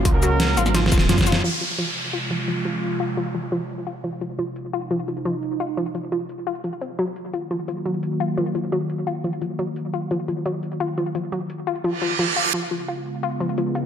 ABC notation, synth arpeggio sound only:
X:1
M:4/4
L:1/8
Q:1/4=173
K:Fphr
V:1 name="Synth arpeggio sound" clef=bass
F, G, z F F, F, F, F | F, F, F, z F F, F, F, | z F F, F, F, z F F, | F, F, z F F, F, F, z |
F F, F, F, z F F, C | G, z F F, F, G, z F | F, F, G, z F F, F, G, | z F F, F, G, z F F, |
F, G, z F F, F, F, F | F, F, F z F F, F, F |]